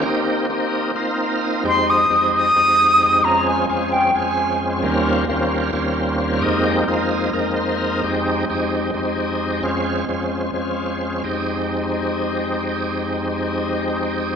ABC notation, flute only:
X:1
M:7/8
L:1/8
Q:1/4=131
K:Fm
V:1 name="Flute"
z6 z | c' e'2 e'4 | b a a g a2 z | z6 z |
z6 z | z6 z | z6 z | z6 z |
z6 z |]